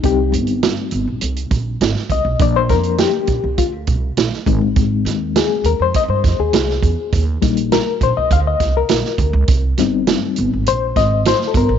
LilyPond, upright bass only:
\new Staff \with { instrumentName = "Upright bass" } { \clef bass \time 4/4 \key c \minor \tempo 4 = 102 c,8 g,,8. r16 g,,16 bes,,16 c,8 bes,,8 aes,,16 r16 c,16 ces,16 | bes,,8 f,8. r16 bes,,16 c,16 d,8 c,8 bes,,16 r16 aes,,16 a,,16 | aes,,8 ees,8. r16 ees,16 f,16 r16 g,16 f,16 ees,16 c,8 fes,16 r16 | ees,8 bes,,8. r16 bes,,16 c,16 d,8 c,8 bes,,16 r16 d,16 des,16 |
c,8 g,,8. r16 g,,16 aes,,16 bes,,8 aes,,8. r16 g,,16 bes,,16 | }